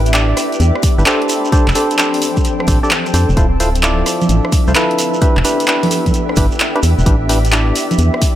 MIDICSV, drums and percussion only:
0, 0, Header, 1, 3, 480
1, 0, Start_track
1, 0, Tempo, 461538
1, 1584, Time_signature, 4, 2, 24, 8
1, 8689, End_track
2, 0, Start_track
2, 0, Title_t, "Shekere"
2, 58, Note_on_c, 9, 82, 36
2, 149, Note_off_c, 9, 82, 0
2, 149, Note_on_c, 9, 82, 53
2, 253, Note_off_c, 9, 82, 0
2, 388, Note_on_c, 9, 82, 90
2, 492, Note_off_c, 9, 82, 0
2, 555, Note_on_c, 9, 82, 36
2, 625, Note_off_c, 9, 82, 0
2, 625, Note_on_c, 9, 82, 58
2, 729, Note_off_c, 9, 82, 0
2, 866, Note_on_c, 9, 82, 93
2, 970, Note_off_c, 9, 82, 0
2, 1026, Note_on_c, 9, 82, 40
2, 1103, Note_off_c, 9, 82, 0
2, 1103, Note_on_c, 9, 82, 52
2, 1207, Note_off_c, 9, 82, 0
2, 1343, Note_on_c, 9, 82, 90
2, 1447, Note_off_c, 9, 82, 0
2, 1508, Note_on_c, 9, 82, 39
2, 1589, Note_off_c, 9, 82, 0
2, 1589, Note_on_c, 9, 82, 54
2, 1693, Note_off_c, 9, 82, 0
2, 1748, Note_on_c, 9, 82, 34
2, 1822, Note_off_c, 9, 82, 0
2, 1822, Note_on_c, 9, 82, 93
2, 1926, Note_off_c, 9, 82, 0
2, 1984, Note_on_c, 9, 82, 37
2, 2067, Note_off_c, 9, 82, 0
2, 2067, Note_on_c, 9, 82, 58
2, 2171, Note_off_c, 9, 82, 0
2, 2225, Note_on_c, 9, 82, 35
2, 2311, Note_off_c, 9, 82, 0
2, 2311, Note_on_c, 9, 82, 98
2, 2415, Note_off_c, 9, 82, 0
2, 2463, Note_on_c, 9, 82, 41
2, 2542, Note_off_c, 9, 82, 0
2, 2542, Note_on_c, 9, 82, 55
2, 2646, Note_off_c, 9, 82, 0
2, 2784, Note_on_c, 9, 82, 96
2, 2888, Note_off_c, 9, 82, 0
2, 2950, Note_on_c, 9, 82, 40
2, 3027, Note_off_c, 9, 82, 0
2, 3027, Note_on_c, 9, 82, 49
2, 3131, Note_off_c, 9, 82, 0
2, 3184, Note_on_c, 9, 82, 37
2, 3270, Note_off_c, 9, 82, 0
2, 3270, Note_on_c, 9, 82, 100
2, 3374, Note_off_c, 9, 82, 0
2, 3425, Note_on_c, 9, 82, 36
2, 3509, Note_off_c, 9, 82, 0
2, 3509, Note_on_c, 9, 82, 49
2, 3613, Note_off_c, 9, 82, 0
2, 3750, Note_on_c, 9, 82, 90
2, 3854, Note_off_c, 9, 82, 0
2, 3900, Note_on_c, 9, 82, 35
2, 3990, Note_off_c, 9, 82, 0
2, 3990, Note_on_c, 9, 82, 53
2, 4094, Note_off_c, 9, 82, 0
2, 4229, Note_on_c, 9, 82, 90
2, 4333, Note_off_c, 9, 82, 0
2, 4381, Note_on_c, 9, 82, 40
2, 4463, Note_off_c, 9, 82, 0
2, 4463, Note_on_c, 9, 82, 51
2, 4567, Note_off_c, 9, 82, 0
2, 4705, Note_on_c, 9, 82, 86
2, 4809, Note_off_c, 9, 82, 0
2, 4860, Note_on_c, 9, 82, 38
2, 4938, Note_off_c, 9, 82, 0
2, 4938, Note_on_c, 9, 82, 50
2, 5042, Note_off_c, 9, 82, 0
2, 5188, Note_on_c, 9, 82, 85
2, 5292, Note_off_c, 9, 82, 0
2, 5344, Note_on_c, 9, 82, 35
2, 5423, Note_off_c, 9, 82, 0
2, 5423, Note_on_c, 9, 82, 48
2, 5527, Note_off_c, 9, 82, 0
2, 5667, Note_on_c, 9, 82, 95
2, 5771, Note_off_c, 9, 82, 0
2, 5828, Note_on_c, 9, 82, 37
2, 5910, Note_off_c, 9, 82, 0
2, 5910, Note_on_c, 9, 82, 53
2, 6014, Note_off_c, 9, 82, 0
2, 6146, Note_on_c, 9, 82, 76
2, 6250, Note_off_c, 9, 82, 0
2, 6312, Note_on_c, 9, 82, 39
2, 6389, Note_off_c, 9, 82, 0
2, 6389, Note_on_c, 9, 82, 50
2, 6493, Note_off_c, 9, 82, 0
2, 6616, Note_on_c, 9, 82, 82
2, 6720, Note_off_c, 9, 82, 0
2, 6775, Note_on_c, 9, 82, 36
2, 6866, Note_off_c, 9, 82, 0
2, 6866, Note_on_c, 9, 82, 47
2, 6970, Note_off_c, 9, 82, 0
2, 7100, Note_on_c, 9, 82, 80
2, 7204, Note_off_c, 9, 82, 0
2, 7265, Note_on_c, 9, 82, 37
2, 7343, Note_off_c, 9, 82, 0
2, 7343, Note_on_c, 9, 82, 50
2, 7447, Note_off_c, 9, 82, 0
2, 7594, Note_on_c, 9, 82, 83
2, 7698, Note_off_c, 9, 82, 0
2, 7753, Note_on_c, 9, 82, 34
2, 7827, Note_off_c, 9, 82, 0
2, 7827, Note_on_c, 9, 82, 53
2, 7931, Note_off_c, 9, 82, 0
2, 8068, Note_on_c, 9, 82, 78
2, 8172, Note_off_c, 9, 82, 0
2, 8228, Note_on_c, 9, 82, 38
2, 8303, Note_off_c, 9, 82, 0
2, 8303, Note_on_c, 9, 82, 50
2, 8407, Note_off_c, 9, 82, 0
2, 8548, Note_on_c, 9, 82, 79
2, 8652, Note_off_c, 9, 82, 0
2, 8689, End_track
3, 0, Start_track
3, 0, Title_t, "Drums"
3, 65, Note_on_c, 9, 42, 60
3, 145, Note_off_c, 9, 42, 0
3, 145, Note_on_c, 9, 39, 125
3, 145, Note_on_c, 9, 42, 61
3, 249, Note_off_c, 9, 39, 0
3, 249, Note_off_c, 9, 42, 0
3, 384, Note_on_c, 9, 37, 66
3, 384, Note_on_c, 9, 46, 100
3, 488, Note_off_c, 9, 37, 0
3, 488, Note_off_c, 9, 46, 0
3, 545, Note_on_c, 9, 42, 34
3, 625, Note_off_c, 9, 42, 0
3, 625, Note_on_c, 9, 42, 60
3, 729, Note_off_c, 9, 42, 0
3, 785, Note_on_c, 9, 37, 67
3, 864, Note_on_c, 9, 36, 104
3, 864, Note_on_c, 9, 46, 100
3, 889, Note_off_c, 9, 37, 0
3, 968, Note_off_c, 9, 36, 0
3, 968, Note_off_c, 9, 46, 0
3, 1105, Note_on_c, 9, 39, 125
3, 1105, Note_on_c, 9, 42, 62
3, 1209, Note_off_c, 9, 39, 0
3, 1209, Note_off_c, 9, 42, 0
3, 1266, Note_on_c, 9, 42, 32
3, 1345, Note_on_c, 9, 37, 30
3, 1345, Note_on_c, 9, 46, 94
3, 1370, Note_off_c, 9, 42, 0
3, 1449, Note_off_c, 9, 37, 0
3, 1449, Note_off_c, 9, 46, 0
3, 1584, Note_on_c, 9, 36, 119
3, 1585, Note_on_c, 9, 42, 60
3, 1688, Note_off_c, 9, 36, 0
3, 1689, Note_off_c, 9, 42, 0
3, 1746, Note_on_c, 9, 39, 64
3, 1825, Note_on_c, 9, 46, 99
3, 1850, Note_off_c, 9, 39, 0
3, 1929, Note_off_c, 9, 46, 0
3, 1986, Note_on_c, 9, 42, 58
3, 2066, Note_off_c, 9, 42, 0
3, 2066, Note_on_c, 9, 39, 122
3, 2066, Note_on_c, 9, 42, 63
3, 2170, Note_off_c, 9, 39, 0
3, 2170, Note_off_c, 9, 42, 0
3, 2226, Note_on_c, 9, 46, 58
3, 2306, Note_off_c, 9, 46, 0
3, 2306, Note_on_c, 9, 46, 96
3, 2410, Note_off_c, 9, 46, 0
3, 2464, Note_on_c, 9, 36, 63
3, 2466, Note_on_c, 9, 42, 35
3, 2546, Note_off_c, 9, 42, 0
3, 2546, Note_on_c, 9, 42, 60
3, 2568, Note_off_c, 9, 36, 0
3, 2650, Note_off_c, 9, 42, 0
3, 2706, Note_on_c, 9, 37, 64
3, 2784, Note_on_c, 9, 36, 109
3, 2786, Note_on_c, 9, 46, 97
3, 2810, Note_off_c, 9, 37, 0
3, 2888, Note_off_c, 9, 36, 0
3, 2890, Note_off_c, 9, 46, 0
3, 3025, Note_on_c, 9, 39, 123
3, 3025, Note_on_c, 9, 42, 62
3, 3129, Note_off_c, 9, 39, 0
3, 3129, Note_off_c, 9, 42, 0
3, 3185, Note_on_c, 9, 37, 29
3, 3185, Note_on_c, 9, 42, 33
3, 3264, Note_on_c, 9, 46, 96
3, 3289, Note_off_c, 9, 37, 0
3, 3289, Note_off_c, 9, 42, 0
3, 3368, Note_off_c, 9, 46, 0
3, 3504, Note_on_c, 9, 36, 109
3, 3504, Note_on_c, 9, 42, 66
3, 3608, Note_off_c, 9, 36, 0
3, 3608, Note_off_c, 9, 42, 0
3, 3744, Note_on_c, 9, 46, 101
3, 3848, Note_off_c, 9, 46, 0
3, 3905, Note_on_c, 9, 42, 60
3, 3984, Note_off_c, 9, 42, 0
3, 3984, Note_on_c, 9, 39, 114
3, 3984, Note_on_c, 9, 42, 67
3, 4088, Note_off_c, 9, 39, 0
3, 4088, Note_off_c, 9, 42, 0
3, 4224, Note_on_c, 9, 37, 63
3, 4224, Note_on_c, 9, 46, 94
3, 4328, Note_off_c, 9, 37, 0
3, 4328, Note_off_c, 9, 46, 0
3, 4384, Note_on_c, 9, 42, 35
3, 4384, Note_on_c, 9, 63, 60
3, 4464, Note_off_c, 9, 42, 0
3, 4464, Note_on_c, 9, 42, 63
3, 4488, Note_off_c, 9, 63, 0
3, 4568, Note_off_c, 9, 42, 0
3, 4624, Note_on_c, 9, 37, 64
3, 4704, Note_on_c, 9, 36, 102
3, 4704, Note_on_c, 9, 46, 99
3, 4728, Note_off_c, 9, 37, 0
3, 4808, Note_off_c, 9, 36, 0
3, 4808, Note_off_c, 9, 46, 0
3, 4945, Note_on_c, 9, 39, 113
3, 4945, Note_on_c, 9, 42, 64
3, 5049, Note_off_c, 9, 39, 0
3, 5049, Note_off_c, 9, 42, 0
3, 5106, Note_on_c, 9, 42, 35
3, 5185, Note_on_c, 9, 37, 28
3, 5185, Note_on_c, 9, 46, 95
3, 5210, Note_off_c, 9, 42, 0
3, 5289, Note_off_c, 9, 37, 0
3, 5289, Note_off_c, 9, 46, 0
3, 5424, Note_on_c, 9, 36, 108
3, 5426, Note_on_c, 9, 42, 67
3, 5528, Note_off_c, 9, 36, 0
3, 5530, Note_off_c, 9, 42, 0
3, 5587, Note_on_c, 9, 39, 58
3, 5665, Note_on_c, 9, 46, 102
3, 5691, Note_off_c, 9, 39, 0
3, 5769, Note_off_c, 9, 46, 0
3, 5825, Note_on_c, 9, 42, 63
3, 5905, Note_off_c, 9, 42, 0
3, 5905, Note_on_c, 9, 39, 112
3, 5905, Note_on_c, 9, 42, 70
3, 6009, Note_off_c, 9, 39, 0
3, 6009, Note_off_c, 9, 42, 0
3, 6065, Note_on_c, 9, 46, 58
3, 6065, Note_on_c, 9, 63, 63
3, 6145, Note_off_c, 9, 46, 0
3, 6145, Note_on_c, 9, 46, 103
3, 6169, Note_off_c, 9, 63, 0
3, 6249, Note_off_c, 9, 46, 0
3, 6304, Note_on_c, 9, 36, 58
3, 6305, Note_on_c, 9, 42, 36
3, 6305, Note_on_c, 9, 63, 61
3, 6385, Note_off_c, 9, 42, 0
3, 6385, Note_on_c, 9, 42, 63
3, 6408, Note_off_c, 9, 36, 0
3, 6409, Note_off_c, 9, 63, 0
3, 6489, Note_off_c, 9, 42, 0
3, 6545, Note_on_c, 9, 37, 62
3, 6624, Note_on_c, 9, 36, 97
3, 6625, Note_on_c, 9, 46, 100
3, 6649, Note_off_c, 9, 37, 0
3, 6728, Note_off_c, 9, 36, 0
3, 6729, Note_off_c, 9, 46, 0
3, 6866, Note_on_c, 9, 39, 110
3, 6866, Note_on_c, 9, 42, 68
3, 6970, Note_off_c, 9, 39, 0
3, 6970, Note_off_c, 9, 42, 0
3, 7027, Note_on_c, 9, 37, 27
3, 7027, Note_on_c, 9, 42, 36
3, 7106, Note_on_c, 9, 46, 96
3, 7131, Note_off_c, 9, 37, 0
3, 7131, Note_off_c, 9, 42, 0
3, 7210, Note_off_c, 9, 46, 0
3, 7344, Note_on_c, 9, 36, 108
3, 7346, Note_on_c, 9, 42, 70
3, 7448, Note_off_c, 9, 36, 0
3, 7450, Note_off_c, 9, 42, 0
3, 7586, Note_on_c, 9, 46, 104
3, 7690, Note_off_c, 9, 46, 0
3, 7745, Note_on_c, 9, 42, 65
3, 7826, Note_off_c, 9, 42, 0
3, 7826, Note_on_c, 9, 39, 113
3, 7826, Note_on_c, 9, 42, 69
3, 7930, Note_off_c, 9, 39, 0
3, 7930, Note_off_c, 9, 42, 0
3, 8066, Note_on_c, 9, 46, 108
3, 8170, Note_off_c, 9, 46, 0
3, 8226, Note_on_c, 9, 42, 37
3, 8226, Note_on_c, 9, 63, 58
3, 8306, Note_off_c, 9, 42, 0
3, 8306, Note_on_c, 9, 42, 68
3, 8330, Note_off_c, 9, 63, 0
3, 8410, Note_off_c, 9, 42, 0
3, 8466, Note_on_c, 9, 37, 67
3, 8544, Note_on_c, 9, 36, 100
3, 8545, Note_on_c, 9, 46, 106
3, 8570, Note_off_c, 9, 37, 0
3, 8648, Note_off_c, 9, 36, 0
3, 8649, Note_off_c, 9, 46, 0
3, 8689, End_track
0, 0, End_of_file